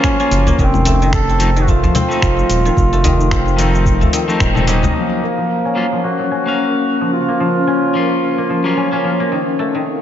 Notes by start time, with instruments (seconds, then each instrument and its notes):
Already playing: guzheng F3 F#3 A#3, clean electric guitar F#3 A#3 C#4 F4, duduk C#4
0.04 guzheng C#4, finger snap, kick, shaker
0.19 clean electric guitar A#3 C#4 F4, guzheng C#4, shaker
0.31 analog synth bass F#1, guzheng F3, closed hi-hat, shaker
0.46 guzheng A#3, udu, shaker
0.58 analog synth bass F1, guzheng D#3, duduk C4, kick, shaker
0.74 low conga, shaker
0.85 guzheng A3, closed hi-hat, udu, shaker
1.02 guzheng D#3, shaker
1.13 duduk A4, finger snap, kick, shaker
1.29 guzheng C4, shaker
1.39 clean electric guitar F3 A3 C4 D#4, closed hi-hat, shaker
1.56 guzheng D#3, shaker
1.61 duduk F#4
1.68 guzheng A3, duduk F4, kick, shaker
1.83 guzheng F3, udu, shaker
1.95 guzheng C4, closed hi-hat, low conga, shaker
2.08 clean electric guitar F3 A3 C4 D#4, shaker
2.22 analog synth bass F1, finger snap, kick, shaker
2.39 shaker
2.49 analog synth bass D#1, closed hi-hat, shaker
2.65 guzheng D#3, shaker
2.77 analog synth bass F1, kick, shaker
2.93 guzheng A3, shaker
3.04 guzheng D#3, closed hi-hat, udu, shaker
3.21 shaker
3.31 guzheng C4, finger snap, kick, shaker
3.48 shaker
3.56 guzheng D#3, clean electric guitar F3 A3 C4 D#4, closed hi-hat, shaker
3.75 shaker
3.86 kick, shaker
4.01 guzheng A3, udu, shaker
4.13 guzheng D#3, closed hi-hat, shaker
4.28 clean electric guitar F3 A3 C4 D#4, shaker
4.40 analog synth bass D#1, guzheng C4, finger snap, kick, shaker
4.55 clean electric guitar F3 A3 C4 D#4, low conga, shaker
4.67 clean electric guitar F#3 A#3 C#4 D#4, guzheng C4, closed hi-hat, shaker
4.83 guzheng D#4, low conga, udu, shaker
4.94 guzheng F3, duduk A#3, ambient pad C#4 A#4 F5
5.22 guzheng A#3
5.38 guzheng F3
5.65 guzheng C#4
5.75 clean electric guitar F#3 A#3 C#4 F4
5.92 guzheng F3
6.03 guzheng A#3, duduk F#4
6.19 guzheng F#3
6.31 guzheng C#4
6.46 clean electric guitar A#3 C#4 F5
7.01 guzheng F3
7.12 duduk F4
7.28 guzheng A#3
7.40 guzheng F3
7.67 guzheng C#4
7.94 guzheng F3, clean electric guitar A#3 C#4 F4
8.38 guzheng A#3
8.50 guzheng F3
8.64 clean electric guitar F#3 A#3 C#4 F4
8.77 guzheng C#4
8.92 clean electric guitar A#3 C#4 F4, guzheng C#4
9.04 guzheng F3
9.20 guzheng A#3
9.31 guzheng D#3, ambient pad C4 A4 D#5 F5
9.59 guzheng A3
9.75 guzheng D#3